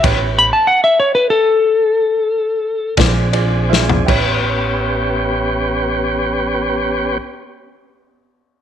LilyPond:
<<
  \new Staff \with { instrumentName = "Electric slide guitar" } { \time 12/8 \key a \mixolydian \tempo 4. = 52 r8 b''16 a''16 fis''16 e''16 cis''16 b'16 a'2~ a'8 r4. | r1. | }
  \new Staff \with { instrumentName = "Upright piano" } { \time 12/8 \key a \mixolydian <e' g' b' cis''>8 r1 <f' aes' c'' d''>8 <f' aes' c'' d''>8 <f' aes' c'' e''>8 | <e' g' b' cis''>1. | }
  \new Staff \with { instrumentName = "Tonewheel organ" } { \time 12/8 \key a \mixolydian <b cis' g'>4 r2. r8 <c' d' aes'>4. | <b cis' g'>1. | }
  \new Staff \with { instrumentName = "Upright bass" } { \clef bass \time 12/8 \key a \mixolydian a,,4 r2. r8 bes,,4. | a,,1. | }
  \new DrumStaff \with { instrumentName = "Drums" } \drummode { \time 12/8 <cymc bd cymr>4. r4. r4. <bd cymr sn>8 cymr8 sn16 tomfh16 | <cymc bd>4. r4. r4. r4. | }
>>